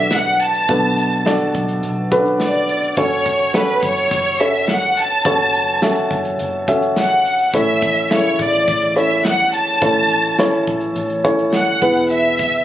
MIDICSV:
0, 0, Header, 1, 5, 480
1, 0, Start_track
1, 0, Key_signature, 3, "minor"
1, 0, Tempo, 571048
1, 576, Time_signature, 4, 2, 24, 8
1, 10631, End_track
2, 0, Start_track
2, 0, Title_t, "Violin section"
2, 0, Program_c, 0, 48
2, 0, Note_on_c, 0, 76, 78
2, 104, Note_off_c, 0, 76, 0
2, 118, Note_on_c, 0, 78, 80
2, 342, Note_on_c, 0, 81, 83
2, 347, Note_off_c, 0, 78, 0
2, 1299, Note_off_c, 0, 81, 0
2, 2030, Note_on_c, 0, 74, 71
2, 2470, Note_off_c, 0, 74, 0
2, 2506, Note_on_c, 0, 73, 78
2, 2981, Note_off_c, 0, 73, 0
2, 2984, Note_on_c, 0, 71, 79
2, 3220, Note_off_c, 0, 71, 0
2, 3232, Note_on_c, 0, 73, 83
2, 3704, Note_off_c, 0, 73, 0
2, 3709, Note_on_c, 0, 76, 74
2, 3942, Note_off_c, 0, 76, 0
2, 3955, Note_on_c, 0, 78, 79
2, 4185, Note_off_c, 0, 78, 0
2, 4199, Note_on_c, 0, 81, 94
2, 5147, Note_off_c, 0, 81, 0
2, 5871, Note_on_c, 0, 78, 73
2, 6310, Note_off_c, 0, 78, 0
2, 6353, Note_on_c, 0, 76, 76
2, 6825, Note_off_c, 0, 76, 0
2, 6836, Note_on_c, 0, 73, 77
2, 7050, Note_off_c, 0, 73, 0
2, 7074, Note_on_c, 0, 74, 78
2, 7512, Note_off_c, 0, 74, 0
2, 7553, Note_on_c, 0, 76, 79
2, 7769, Note_off_c, 0, 76, 0
2, 7792, Note_on_c, 0, 78, 88
2, 8008, Note_off_c, 0, 78, 0
2, 8031, Note_on_c, 0, 81, 91
2, 8950, Note_off_c, 0, 81, 0
2, 9705, Note_on_c, 0, 78, 95
2, 10147, Note_off_c, 0, 78, 0
2, 10185, Note_on_c, 0, 76, 86
2, 10631, Note_off_c, 0, 76, 0
2, 10631, End_track
3, 0, Start_track
3, 0, Title_t, "Upright piano"
3, 0, Program_c, 1, 0
3, 0, Control_c, 1, 64, 127
3, 0, Note_on_c, 1, 47, 51
3, 0, Note_on_c, 1, 62, 57
3, 0, Note_on_c, 1, 66, 52
3, 0, Note_on_c, 1, 69, 47
3, 0, Note_on_c, 1, 71, 68
3, 0, Note_on_c, 1, 74, 56
3, 474, Note_off_c, 1, 62, 0
3, 474, Note_off_c, 1, 66, 0
3, 476, Note_off_c, 1, 69, 0
3, 476, Note_off_c, 1, 74, 0
3, 580, Note_on_c, 1, 62, 67
3, 580, Note_on_c, 1, 66, 60
3, 583, Note_off_c, 1, 47, 0
3, 583, Note_on_c, 1, 47, 58
3, 584, Note_on_c, 1, 69, 61
3, 587, Note_off_c, 1, 71, 0
3, 587, Note_on_c, 1, 71, 69
3, 990, Note_off_c, 1, 62, 0
3, 990, Note_off_c, 1, 66, 0
3, 992, Note_off_c, 1, 69, 0
3, 993, Note_off_c, 1, 71, 0
3, 1056, Note_on_c, 1, 62, 73
3, 1062, Note_on_c, 1, 66, 72
3, 1062, Note_on_c, 1, 69, 69
3, 1063, Note_on_c, 1, 74, 83
3, 1266, Note_off_c, 1, 47, 0
3, 1673, Note_off_c, 1, 62, 0
3, 1676, Note_off_c, 1, 66, 0
3, 1677, Note_off_c, 1, 69, 0
3, 1677, Note_off_c, 1, 74, 0
3, 1777, Note_on_c, 1, 66, 66
3, 1778, Note_on_c, 1, 61, 51
3, 1781, Note_on_c, 1, 69, 59
3, 1781, Note_on_c, 1, 71, 83
3, 1831, Note_off_c, 1, 61, 0
3, 1832, Note_on_c, 1, 62, 70
3, 2394, Note_off_c, 1, 66, 0
3, 2396, Note_off_c, 1, 69, 0
3, 2396, Note_off_c, 1, 71, 0
3, 2422, Note_off_c, 1, 62, 0
3, 2497, Note_on_c, 1, 61, 67
3, 2499, Note_on_c, 1, 66, 62
3, 2500, Note_on_c, 1, 69, 61
3, 2501, Note_on_c, 1, 73, 68
3, 2508, Control_c, 1, 64, 0
3, 2657, Control_c, 1, 64, 127
3, 2908, Note_off_c, 1, 61, 0
3, 2909, Note_off_c, 1, 66, 0
3, 2910, Note_off_c, 1, 69, 0
3, 2910, Note_off_c, 1, 73, 0
3, 2977, Note_on_c, 1, 61, 65
3, 2980, Note_on_c, 1, 66, 62
3, 2981, Note_on_c, 1, 69, 61
3, 2983, Note_on_c, 1, 73, 65
3, 3594, Note_off_c, 1, 61, 0
3, 3595, Note_off_c, 1, 66, 0
3, 3596, Note_off_c, 1, 69, 0
3, 3597, Note_off_c, 1, 73, 0
3, 3696, Note_on_c, 1, 61, 56
3, 3698, Note_on_c, 1, 66, 52
3, 3702, Note_on_c, 1, 69, 54
3, 3704, Note_on_c, 1, 73, 63
3, 4314, Note_off_c, 1, 61, 0
3, 4315, Note_off_c, 1, 66, 0
3, 4316, Note_off_c, 1, 69, 0
3, 4317, Note_off_c, 1, 73, 0
3, 4414, Note_on_c, 1, 61, 69
3, 4418, Note_on_c, 1, 66, 62
3, 4419, Note_on_c, 1, 69, 62
3, 4422, Note_on_c, 1, 73, 73
3, 4827, Note_off_c, 1, 61, 0
3, 4829, Note_off_c, 1, 66, 0
3, 4829, Note_off_c, 1, 69, 0
3, 4831, Note_off_c, 1, 73, 0
3, 4889, Note_on_c, 1, 61, 74
3, 4894, Note_on_c, 1, 66, 69
3, 4895, Note_on_c, 1, 69, 69
3, 4898, Note_on_c, 1, 76, 81
3, 5510, Note_off_c, 1, 61, 0
3, 5513, Note_off_c, 1, 66, 0
3, 5513, Note_off_c, 1, 69, 0
3, 5515, Note_off_c, 1, 76, 0
3, 5616, Note_on_c, 1, 61, 69
3, 5617, Note_on_c, 1, 66, 63
3, 5620, Note_on_c, 1, 76, 80
3, 5621, Note_on_c, 1, 69, 56
3, 6233, Note_off_c, 1, 61, 0
3, 6234, Note_off_c, 1, 66, 0
3, 6236, Note_off_c, 1, 69, 0
3, 6236, Note_off_c, 1, 76, 0
3, 6334, Note_on_c, 1, 61, 66
3, 6337, Note_on_c, 1, 64, 56
3, 6337, Note_on_c, 1, 69, 59
3, 6338, Note_on_c, 1, 45, 55
3, 6341, Note_on_c, 1, 73, 70
3, 6347, Control_c, 1, 64, 0
3, 6495, Control_c, 1, 64, 127
3, 6747, Note_off_c, 1, 61, 0
3, 6748, Note_off_c, 1, 64, 0
3, 6748, Note_off_c, 1, 69, 0
3, 6750, Note_off_c, 1, 73, 0
3, 6816, Note_on_c, 1, 49, 65
3, 6816, Note_on_c, 1, 64, 56
3, 6819, Note_on_c, 1, 69, 55
3, 6820, Note_on_c, 1, 76, 66
3, 7024, Note_off_c, 1, 45, 0
3, 7433, Note_off_c, 1, 49, 0
3, 7434, Note_off_c, 1, 64, 0
3, 7435, Note_off_c, 1, 69, 0
3, 7436, Note_off_c, 1, 76, 0
3, 7528, Note_on_c, 1, 61, 53
3, 7531, Note_on_c, 1, 64, 53
3, 7532, Note_on_c, 1, 69, 52
3, 7535, Note_on_c, 1, 73, 63
3, 8150, Note_off_c, 1, 61, 0
3, 8151, Note_off_c, 1, 64, 0
3, 8152, Note_off_c, 1, 69, 0
3, 8153, Note_off_c, 1, 73, 0
3, 8248, Note_on_c, 1, 61, 68
3, 8248, Note_on_c, 1, 64, 58
3, 8250, Note_on_c, 1, 45, 62
3, 8252, Note_on_c, 1, 69, 56
3, 8257, Note_on_c, 1, 73, 71
3, 8664, Note_off_c, 1, 61, 0
3, 8664, Note_off_c, 1, 64, 0
3, 8666, Note_off_c, 1, 69, 0
3, 8669, Note_off_c, 1, 73, 0
3, 8731, Note_on_c, 1, 64, 70
3, 8732, Note_on_c, 1, 61, 80
3, 8735, Note_on_c, 1, 69, 70
3, 8737, Note_on_c, 1, 73, 82
3, 8939, Note_off_c, 1, 45, 0
3, 9351, Note_off_c, 1, 64, 0
3, 9352, Note_off_c, 1, 61, 0
3, 9353, Note_off_c, 1, 69, 0
3, 9354, Note_off_c, 1, 73, 0
3, 9447, Note_on_c, 1, 61, 72
3, 9449, Note_on_c, 1, 64, 66
3, 9452, Note_on_c, 1, 69, 60
3, 9453, Note_on_c, 1, 73, 81
3, 9917, Note_off_c, 1, 64, 0
3, 9929, Note_on_c, 1, 64, 66
3, 9932, Note_off_c, 1, 61, 0
3, 9932, Note_on_c, 1, 59, 70
3, 9933, Note_on_c, 1, 52, 58
3, 9934, Note_on_c, 1, 68, 69
3, 9935, Note_off_c, 1, 69, 0
3, 9935, Note_off_c, 1, 73, 0
3, 9937, Note_on_c, 1, 71, 83
3, 9949, Control_c, 1, 64, 0
3, 10088, Control_c, 1, 64, 127
3, 10551, Note_off_c, 1, 64, 0
3, 10552, Note_off_c, 1, 59, 0
3, 10553, Note_off_c, 1, 68, 0
3, 10555, Note_off_c, 1, 71, 0
3, 10621, Note_off_c, 1, 52, 0
3, 10631, End_track
4, 0, Start_track
4, 0, Title_t, "Fingered electric bass"
4, 0, Program_c, 2, 33
4, 0, Note_on_c, 2, 35, 87
4, 544, Note_off_c, 2, 35, 0
4, 582, Note_on_c, 2, 35, 103
4, 1265, Note_off_c, 2, 35, 0
4, 1300, Note_on_c, 2, 35, 85
4, 1521, Note_off_c, 2, 35, 0
4, 1544, Note_on_c, 2, 35, 82
4, 2466, Note_off_c, 2, 35, 0
4, 2495, Note_on_c, 2, 30, 86
4, 3182, Note_off_c, 2, 30, 0
4, 3215, Note_on_c, 2, 30, 83
4, 3439, Note_off_c, 2, 30, 0
4, 3455, Note_on_c, 2, 30, 92
4, 4382, Note_off_c, 2, 30, 0
4, 4414, Note_on_c, 2, 30, 102
4, 5101, Note_off_c, 2, 30, 0
4, 5131, Note_on_c, 2, 30, 80
4, 5357, Note_off_c, 2, 30, 0
4, 5381, Note_on_c, 2, 30, 86
4, 6305, Note_off_c, 2, 30, 0
4, 6333, Note_on_c, 2, 33, 91
4, 7021, Note_off_c, 2, 33, 0
4, 7056, Note_on_c, 2, 33, 73
4, 7279, Note_off_c, 2, 33, 0
4, 7296, Note_on_c, 2, 33, 91
4, 8222, Note_off_c, 2, 33, 0
4, 8255, Note_on_c, 2, 33, 100
4, 8942, Note_off_c, 2, 33, 0
4, 8972, Note_on_c, 2, 33, 73
4, 9197, Note_off_c, 2, 33, 0
4, 9211, Note_on_c, 2, 33, 90
4, 9900, Note_off_c, 2, 33, 0
4, 9933, Note_on_c, 2, 28, 83
4, 10631, Note_off_c, 2, 28, 0
4, 10631, End_track
5, 0, Start_track
5, 0, Title_t, "Drums"
5, 91, Note_on_c, 9, 38, 92
5, 175, Note_off_c, 9, 38, 0
5, 337, Note_on_c, 9, 42, 58
5, 421, Note_off_c, 9, 42, 0
5, 456, Note_on_c, 9, 42, 44
5, 540, Note_off_c, 9, 42, 0
5, 577, Note_on_c, 9, 42, 73
5, 579, Note_on_c, 9, 36, 98
5, 661, Note_off_c, 9, 42, 0
5, 663, Note_off_c, 9, 36, 0
5, 822, Note_on_c, 9, 42, 62
5, 907, Note_off_c, 9, 42, 0
5, 941, Note_on_c, 9, 42, 32
5, 1025, Note_off_c, 9, 42, 0
5, 1061, Note_on_c, 9, 38, 90
5, 1145, Note_off_c, 9, 38, 0
5, 1300, Note_on_c, 9, 36, 71
5, 1303, Note_on_c, 9, 42, 54
5, 1384, Note_off_c, 9, 36, 0
5, 1387, Note_off_c, 9, 42, 0
5, 1418, Note_on_c, 9, 42, 50
5, 1502, Note_off_c, 9, 42, 0
5, 1538, Note_on_c, 9, 42, 60
5, 1622, Note_off_c, 9, 42, 0
5, 1779, Note_on_c, 9, 36, 78
5, 1782, Note_on_c, 9, 42, 64
5, 1863, Note_off_c, 9, 36, 0
5, 1866, Note_off_c, 9, 42, 0
5, 1897, Note_on_c, 9, 42, 37
5, 1981, Note_off_c, 9, 42, 0
5, 2015, Note_on_c, 9, 38, 96
5, 2099, Note_off_c, 9, 38, 0
5, 2262, Note_on_c, 9, 42, 62
5, 2346, Note_off_c, 9, 42, 0
5, 2378, Note_on_c, 9, 42, 45
5, 2462, Note_off_c, 9, 42, 0
5, 2494, Note_on_c, 9, 42, 71
5, 2498, Note_on_c, 9, 36, 100
5, 2578, Note_off_c, 9, 42, 0
5, 2582, Note_off_c, 9, 36, 0
5, 2616, Note_on_c, 9, 42, 29
5, 2700, Note_off_c, 9, 42, 0
5, 2738, Note_on_c, 9, 42, 67
5, 2739, Note_on_c, 9, 36, 80
5, 2822, Note_off_c, 9, 42, 0
5, 2823, Note_off_c, 9, 36, 0
5, 2855, Note_on_c, 9, 42, 36
5, 2939, Note_off_c, 9, 42, 0
5, 2977, Note_on_c, 9, 38, 94
5, 3061, Note_off_c, 9, 38, 0
5, 3096, Note_on_c, 9, 42, 29
5, 3180, Note_off_c, 9, 42, 0
5, 3216, Note_on_c, 9, 42, 55
5, 3217, Note_on_c, 9, 36, 64
5, 3300, Note_off_c, 9, 42, 0
5, 3301, Note_off_c, 9, 36, 0
5, 3333, Note_on_c, 9, 42, 48
5, 3417, Note_off_c, 9, 42, 0
5, 3457, Note_on_c, 9, 36, 86
5, 3458, Note_on_c, 9, 42, 61
5, 3541, Note_off_c, 9, 36, 0
5, 3542, Note_off_c, 9, 42, 0
5, 3700, Note_on_c, 9, 42, 66
5, 3784, Note_off_c, 9, 42, 0
5, 3819, Note_on_c, 9, 42, 41
5, 3903, Note_off_c, 9, 42, 0
5, 3934, Note_on_c, 9, 38, 90
5, 4018, Note_off_c, 9, 38, 0
5, 4053, Note_on_c, 9, 42, 29
5, 4137, Note_off_c, 9, 42, 0
5, 4177, Note_on_c, 9, 42, 65
5, 4261, Note_off_c, 9, 42, 0
5, 4291, Note_on_c, 9, 42, 42
5, 4375, Note_off_c, 9, 42, 0
5, 4410, Note_on_c, 9, 42, 77
5, 4414, Note_on_c, 9, 36, 101
5, 4494, Note_off_c, 9, 42, 0
5, 4498, Note_off_c, 9, 36, 0
5, 4531, Note_on_c, 9, 42, 30
5, 4616, Note_off_c, 9, 42, 0
5, 4655, Note_on_c, 9, 42, 69
5, 4739, Note_off_c, 9, 42, 0
5, 4770, Note_on_c, 9, 42, 34
5, 4854, Note_off_c, 9, 42, 0
5, 4894, Note_on_c, 9, 38, 89
5, 4978, Note_off_c, 9, 38, 0
5, 5009, Note_on_c, 9, 42, 31
5, 5093, Note_off_c, 9, 42, 0
5, 5133, Note_on_c, 9, 36, 69
5, 5133, Note_on_c, 9, 42, 51
5, 5217, Note_off_c, 9, 36, 0
5, 5217, Note_off_c, 9, 42, 0
5, 5252, Note_on_c, 9, 42, 45
5, 5336, Note_off_c, 9, 42, 0
5, 5373, Note_on_c, 9, 42, 63
5, 5457, Note_off_c, 9, 42, 0
5, 5614, Note_on_c, 9, 36, 83
5, 5619, Note_on_c, 9, 42, 70
5, 5698, Note_off_c, 9, 36, 0
5, 5703, Note_off_c, 9, 42, 0
5, 5735, Note_on_c, 9, 42, 37
5, 5819, Note_off_c, 9, 42, 0
5, 5854, Note_on_c, 9, 38, 88
5, 5938, Note_off_c, 9, 38, 0
5, 6098, Note_on_c, 9, 42, 65
5, 6182, Note_off_c, 9, 42, 0
5, 6211, Note_on_c, 9, 42, 44
5, 6296, Note_off_c, 9, 42, 0
5, 6331, Note_on_c, 9, 42, 73
5, 6335, Note_on_c, 9, 36, 100
5, 6415, Note_off_c, 9, 42, 0
5, 6419, Note_off_c, 9, 36, 0
5, 6575, Note_on_c, 9, 42, 67
5, 6576, Note_on_c, 9, 36, 84
5, 6659, Note_off_c, 9, 42, 0
5, 6660, Note_off_c, 9, 36, 0
5, 6691, Note_on_c, 9, 42, 34
5, 6775, Note_off_c, 9, 42, 0
5, 6817, Note_on_c, 9, 38, 94
5, 6901, Note_off_c, 9, 38, 0
5, 6935, Note_on_c, 9, 42, 27
5, 7019, Note_off_c, 9, 42, 0
5, 7054, Note_on_c, 9, 36, 74
5, 7057, Note_on_c, 9, 42, 53
5, 7139, Note_off_c, 9, 36, 0
5, 7141, Note_off_c, 9, 42, 0
5, 7173, Note_on_c, 9, 42, 49
5, 7257, Note_off_c, 9, 42, 0
5, 7295, Note_on_c, 9, 36, 90
5, 7298, Note_on_c, 9, 42, 65
5, 7379, Note_off_c, 9, 36, 0
5, 7382, Note_off_c, 9, 42, 0
5, 7413, Note_on_c, 9, 42, 32
5, 7497, Note_off_c, 9, 42, 0
5, 7542, Note_on_c, 9, 42, 63
5, 7626, Note_off_c, 9, 42, 0
5, 7657, Note_on_c, 9, 42, 42
5, 7741, Note_off_c, 9, 42, 0
5, 7774, Note_on_c, 9, 38, 96
5, 7858, Note_off_c, 9, 38, 0
5, 8013, Note_on_c, 9, 42, 69
5, 8098, Note_off_c, 9, 42, 0
5, 8132, Note_on_c, 9, 42, 48
5, 8216, Note_off_c, 9, 42, 0
5, 8253, Note_on_c, 9, 36, 99
5, 8254, Note_on_c, 9, 42, 71
5, 8337, Note_off_c, 9, 36, 0
5, 8338, Note_off_c, 9, 42, 0
5, 8493, Note_on_c, 9, 42, 69
5, 8577, Note_off_c, 9, 42, 0
5, 8612, Note_on_c, 9, 42, 34
5, 8696, Note_off_c, 9, 42, 0
5, 8731, Note_on_c, 9, 38, 85
5, 8815, Note_off_c, 9, 38, 0
5, 8971, Note_on_c, 9, 42, 54
5, 8972, Note_on_c, 9, 36, 72
5, 9055, Note_off_c, 9, 42, 0
5, 9056, Note_off_c, 9, 36, 0
5, 9084, Note_on_c, 9, 42, 48
5, 9168, Note_off_c, 9, 42, 0
5, 9210, Note_on_c, 9, 42, 64
5, 9294, Note_off_c, 9, 42, 0
5, 9327, Note_on_c, 9, 42, 34
5, 9411, Note_off_c, 9, 42, 0
5, 9453, Note_on_c, 9, 36, 75
5, 9455, Note_on_c, 9, 42, 64
5, 9537, Note_off_c, 9, 36, 0
5, 9539, Note_off_c, 9, 42, 0
5, 9573, Note_on_c, 9, 42, 39
5, 9657, Note_off_c, 9, 42, 0
5, 9689, Note_on_c, 9, 38, 100
5, 9773, Note_off_c, 9, 38, 0
5, 9934, Note_on_c, 9, 36, 84
5, 9935, Note_on_c, 9, 42, 66
5, 10018, Note_off_c, 9, 36, 0
5, 10019, Note_off_c, 9, 42, 0
5, 10052, Note_on_c, 9, 42, 50
5, 10136, Note_off_c, 9, 42, 0
5, 10171, Note_on_c, 9, 42, 75
5, 10256, Note_off_c, 9, 42, 0
5, 10290, Note_on_c, 9, 42, 30
5, 10374, Note_off_c, 9, 42, 0
5, 10414, Note_on_c, 9, 42, 74
5, 10416, Note_on_c, 9, 36, 90
5, 10498, Note_off_c, 9, 42, 0
5, 10500, Note_off_c, 9, 36, 0
5, 10532, Note_on_c, 9, 42, 34
5, 10616, Note_off_c, 9, 42, 0
5, 10631, End_track
0, 0, End_of_file